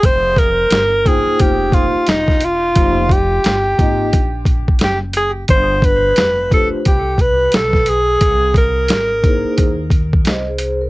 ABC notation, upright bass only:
X:1
M:4/4
L:1/16
Q:"Swing 16ths" 1/4=88
K:Gphr
V:1 name="Upright bass" clef=bass
F,,,4 G,,,3 z F,,,3 z =E,,,4 | F,,,4 G,,,2 A,,,2 B,,,4 _G,,,4 | G,,,4 F,,,3 z C,,4 =B,,,4 | C,,4 z4 ^D,,4 C,,4 |]